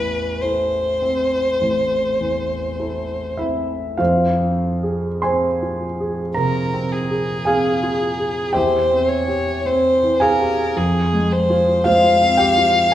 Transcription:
0.00 1.57 A1 soft
0.00 0.78 E2 soft
0.00 0.43 B4 medium
0.42 0.98 E4 soft
0.42 0.99 A4 soft
0.42 3.39 C5 soft
1.02 1.96 C4 soft
1.61 3.95 A1 soft
2.20 3.15 E2 soft
2.79 3.35 E4 soft
2.79 3.35 A4 soft
3.37 3.99 C4 soft
3.37 3.95 E4 soft
3.37 3.98 E5 soft
3.98 6.32 F2 soft
3.98 5.19 F4 soft
3.98 5.19 C5 soft
3.98 5.23 F5 soft
4.41 5.08 C4 soft
4.83 5.47 G#4 soft
5.22 5.85 C4 soft
5.22 6.32 C5 soft
5.22 6.32 G#5 soft
5.22 6.36 C6 medium
5.63 6.22 F4 soft
6.00 6.59 G#4 soft
6.34 6.96 C3 soft
6.34 6.93 A#4 soft
6.34 7.43 A#4 soft
6.34 7.46 A#5 medium
6.73 7.33 C4 soft
6.92 8.54 G#4 soft
7.11 7.45 G#4 soft
7.45 8.05 C4 soft
7.45 8.18 G#4 soft
7.45 8.51 F5 soft
7.45 8.54 G#5 medium
7.83 8.41 F4 soft
8.19 8.55 G#4 soft
8.53 10.74 E2 soft
8.53 9.27 G4 soft
8.53 9.10 C5 soft
8.53 10.18 E5 soft
8.53 10.21 G5 medium
8.91 9.51 C4 soft
9.09 9.67 C#5 soft
9.28 9.88 G4 soft
9.66 10.26 C4 soft
9.66 10.23 C5 soft
10.03 10.63 E3 soft
10.20 11.82 G#4 soft
10.20 10.79 A#4 soft
10.20 11.82 F5 soft
10.20 11.86 G#5 medium
10.40 10.77 G4 soft
10.77 12.90 F2 soft
10.77 11.33 G#4 soft
11.13 11.72 G#3 soft
11.32 11.87 C5 soft
11.50 11.84 F4 soft
11.84 12.44 G#3 soft
11.84 12.36 F4 soft
11.84 12.36 C5 soft
11.84 12.39 F5 medium
11.84 12.94 F5 medium
12.21 12.80 C4 soft
12.37 12.90 G4 soft
12.37 12.93 G5 medium
12.58 12.94 F4 soft

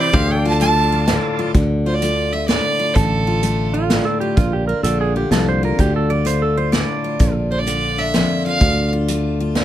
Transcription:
0.00 0.14 C3 medium
0.00 0.12 E3 medium
0.00 0.13 C4 medium
0.00 0.10 E4 medium
0.00 0.14 E4 medium
0.00 0.11 G4 medium
0.00 0.13 G4 medium
0.00 0.11 C5 loud
0.00 0.13 C5 medium
0.00 0.15 D5 loud
0.00 0.14 E5 medium
0.13 1.18 D2 medium
0.13 1.53 D3 medium
0.13 0.39 G4 medium
0.13 0.40 C5 medium
0.13 0.36 E5 medium
0.13 0.32 F5 loud
0.13 kick loud
0.13 closed hi-hat medium
0.31 0.45 G5 medium
0.36 1.54 A4 medium
0.36 1.55 F5 medium
0.40 1.54 D5 medium
0.45 0.61 F4 medium
0.45 0.60 A5 loud
0.61 1.53 A3 medium
0.61 1.05 F4 medium
0.61 0.91 F4 medium
0.61 1.05 A4 medium
0.61 1.05 D5 medium
0.61 1.07 A5 loud
0.61 closed hi-hat medium
0.92 1.38 F4 medium
1.07 1.55 A2 medium
1.07 1.53 D4 medium
1.07 1.51 F4 medium
1.07 1.52 A4 medium
1.07 1.52 D5 medium
1.07 snare medium
1.07 closed hi-hat medium
1.39 1.53 F4 medium
1.54 2.59 D2 medium
1.54 2.94 D3 medium
1.54 kick loud
1.54 closed hi-hat medium
1.86 2.02 F4 medium
1.86 1.95 C5 medium
1.94 2.33 D5 medium
2.02 2.94 A3 medium
2.02 2.33 F4 medium
2.02 closed hi-hat medium
2.32 2.79 F4 medium
2.32 2.47 E5 medium
2.48 2.96 A2 medium
2.48 3.91 D4 medium
2.48 2.96 D5 medium
2.48 snare medium
2.48 closed hi-hat medium
2.79 3.27 F4 medium
2.94 4.00 A1 medium
2.94 4.83 D3 medium
2.94 3.73 A4 medium
2.94 kick loud
2.94 closed hi-hat medium
3.27 3.43 F4 medium
3.43 4.35 A3 medium
3.43 3.74 F4 medium
3.43 closed hi-hat medium
3.74 4.05 F4 medium
3.74 4.21 F4 medium
3.90 4.37 A2 medium
3.90 4.68 D4 medium
3.90 snare medium
3.90 closed hi-hat medium
4.05 4.20 A4 medium
4.20 4.85 F4 medium
4.20 4.36 G4 medium
4.37 4.72 A#1 medium
4.37 4.84 A#2 medium
4.37 4.52 F4 medium
4.37 kick loud
4.37 closed hi-hat medium
4.53 4.67 G4 medium
4.67 5.15 D4 medium
4.67 4.83 A#4 medium
4.83 5.24 A#1 medium
4.83 5.78 D3 medium
4.83 5.63 F4 medium
4.83 4.99 A4 medium
4.83 closed hi-hat medium
5.01 5.16 G#4 medium
5.16 6.73 D4 medium
5.16 5.32 G4 medium
5.31 5.71 C2 medium
5.31 5.77 F2 medium
5.31 5.77 A#3 medium
5.31 5.47 A4 medium
5.31 snare medium
5.31 closed hi-hat medium
5.49 5.63 C5 medium
5.63 6.10 F4 medium
5.63 5.79 A#4 medium
5.78 6.83 D2 medium
5.78 7.66 D3 medium
5.78 5.95 G4 medium
5.78 kick medium
5.78 closed hi-hat medium
5.96 6.10 A4 medium
6.10 6.25 F4 medium
6.10 6.25 D5 medium
6.25 7.18 A3 medium
6.25 6.57 F4 medium
6.25 6.41 C5 medium
6.25 closed hi-hat medium
6.42 6.57 A4 medium
6.57 7.04 F4 medium
6.57 6.73 C5 medium
6.72 7.19 A2 medium
6.72 7.51 D4 medium
6.72 7.33 D5 medium
6.72 snare medium
6.72 closed hi-hat medium
7.04 7.67 F4 medium
7.19 8.24 A#1 medium
7.19 7.67 A#2 medium
7.19 kick loud
7.19 closed hi-hat medium
7.51 7.98 D4 medium
7.51 7.60 C5 medium
7.59 8.00 D5 medium
7.67 8.59 D3 medium
7.67 8.46 F4 medium
7.67 closed hi-hat medium
7.98 9.56 D4 medium
7.98 8.45 E5 medium
8.14 8.59 F2 medium
8.14 8.60 A#3 medium
8.14 snare medium
8.14 closed hi-hat medium
8.46 8.92 F4 medium
8.46 8.89 F5 medium
8.61 9.65 D2 medium
8.61 9.65 D3 medium
8.61 kick loud
8.61 closed hi-hat medium
8.93 9.09 F4 medium
9.08 9.65 A3 medium
9.08 9.40 F4 medium
9.08 closed hi-hat medium
9.40 9.65 F4 medium
9.55 9.65 A2 medium
9.55 9.65 D4 medium
9.55 snare medium
9.55 closed hi-hat medium

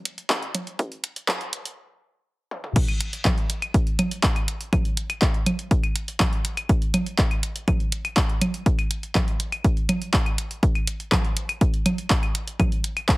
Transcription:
0.05 closed hi-hat loud
0.18 closed hi-hat soft
0.30 kick loud
0.30 clap loud
0.30 closed hi-hat soft
0.42 closed hi-hat soft
0.55 closed hi-hat loud
0.55 low conga medium
0.67 closed hi-hat soft
0.79 kick loud
0.79 closed hi-hat soft
0.92 closed hi-hat soft
1.04 closed hi-hat loud
1.16 closed hi-hat soft
1.28 kick loud
1.28 clap loud
1.28 closed hi-hat soft
1.28 low conga medium
1.41 closed hi-hat soft
1.53 closed hi-hat loud
1.65 closed hi-hat soft
2.51 high tom medium
2.64 mid tom medium
2.76 kick loud
2.76 closed hi-hat soft
2.76 crash loud
2.88 closed hi-hat soft
2.88 claves soft
3.01 closed hi-hat loud
3.13 closed hi-hat soft
3.25 kick loud
3.25 clap loud
3.25 closed hi-hat soft
3.25 low conga medium
3.25 claves medium
3.38 closed hi-hat soft
3.50 closed hi-hat loud
3.62 closed hi-hat soft
3.62 claves medium
3.74 kick loud
3.74 closed hi-hat soft
3.87 closed hi-hat soft
3.99 closed hi-hat loud
3.99 low conga medium
3.99 claves medium
4.11 closed hi-hat soft
4.23 kick loud
4.23 clap loud
4.23 closed hi-hat soft
4.36 closed hi-hat soft
4.36 claves soft
4.48 closed hi-hat loud
4.61 closed hi-hat soft
4.73 kick loud
4.73 closed hi-hat soft
4.73 low conga medium
4.73 claves medium
4.85 closed hi-hat soft
4.97 closed hi-hat loud
5.10 closed hi-hat soft
5.10 claves medium
5.22 kick loud
5.22 clap loud
5.22 closed hi-hat soft
5.34 closed hi-hat soft
5.46 closed hi-hat loud
5.46 low conga medium
5.46 claves medium
5.59 closed hi-hat soft
5.71 kick loud
5.71 closed hi-hat soft
5.83 closed hi-hat soft
5.83 claves medium
5.96 closed hi-hat loud
6.08 closed hi-hat soft
6.20 kick loud
6.20 clap loud
6.20 closed hi-hat soft
6.20 low conga medium
6.20 claves medium
6.33 closed hi-hat soft
6.45 closed hi-hat loud
6.57 closed hi-hat soft
6.57 claves soft
6.69 kick loud
6.69 closed hi-hat soft
6.82 closed hi-hat soft
6.94 closed hi-hat loud
6.94 low conga medium
6.94 claves medium
7.06 closed hi-hat soft
7.19 kick loud
7.19 clap loud
7.19 closed hi-hat soft
7.31 closed hi-hat soft
7.31 claves medium
7.43 closed hi-hat loud
7.56 closed hi-hat soft
7.68 kick loud
7.68 closed hi-hat soft
7.68 low conga medium
7.68 claves medium
7.80 closed hi-hat soft
7.92 closed hi-hat loud
8.05 closed hi-hat soft
8.05 claves medium
8.17 kick loud
8.17 clap loud
8.17 closed hi-hat soft
8.29 closed hi-hat soft
8.42 closed hi-hat loud
8.42 low conga medium
8.42 claves medium
8.54 closed hi-hat soft
8.66 kick loud
8.66 closed hi-hat soft
8.79 closed hi-hat soft
8.79 claves medium
8.91 closed hi-hat loud
9.03 closed hi-hat soft
9.15 kick loud
9.15 clap loud
9.15 closed hi-hat soft
9.15 low conga medium
9.15 claves medium
9.28 closed hi-hat soft
9.40 closed hi-hat loud
9.52 closed hi-hat soft
9.52 claves medium
9.64 kick loud
9.64 closed hi-hat soft
9.77 closed hi-hat soft
9.89 closed hi-hat loud
9.89 low conga loud
9.89 claves medium
10.02 closed hi-hat soft
10.14 kick loud
10.14 clap loud
10.14 closed hi-hat soft
10.26 closed hi-hat soft
10.26 claves medium
10.38 closed hi-hat loud
10.51 closed hi-hat soft
10.63 kick loud
10.63 closed hi-hat soft
10.75 closed hi-hat soft
10.75 claves medium
10.87 closed hi-hat loud
11.00 closed hi-hat soft
11.12 kick loud
11.12 clap loud
11.12 closed hi-hat soft
11.12 low conga loud
11.12 claves medium
11.25 closed hi-hat soft
11.37 closed hi-hat loud
11.49 closed hi-hat soft
11.49 claves medium
11.61 kick loud
11.61 closed hi-hat soft
11.74 closed hi-hat soft
11.86 closed hi-hat loud
11.86 low conga medium
11.86 claves medium
11.98 closed hi-hat soft
12.10 kick loud
12.10 clap loud
12.10 closed hi-hat soft
12.23 closed hi-hat soft
12.23 claves medium
12.35 closed hi-hat loud
12.47 closed hi-hat soft
12.60 kick loud
12.60 closed hi-hat soft
12.60 low conga loud
12.60 claves medium
12.72 closed hi-hat soft
12.84 closed hi-hat loud
12.97 closed hi-hat soft
12.97 claves medium
13.09 kick loud
13.09 clap loud
13.09 closed hi-hat soft

